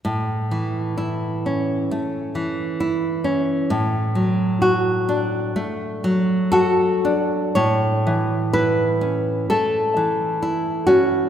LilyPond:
\new Staff \with { instrumentName = "Nylon-string guitar" } { \time 4/4 \key a \major \tempo 4 = 64 << { r1 | r2. a'4 | cis''4 b'4 a'4. fis'8 | } \\ { a,8 e8 e'8 cis'8 a8 e8 e'8 cis'8 | a,8 fis8 fis'8 d'8 a8 fis8 fis'8 d'8 | a,8 e8 e'8 cis'8 a8 e8 e'8 cis'8 | } >> }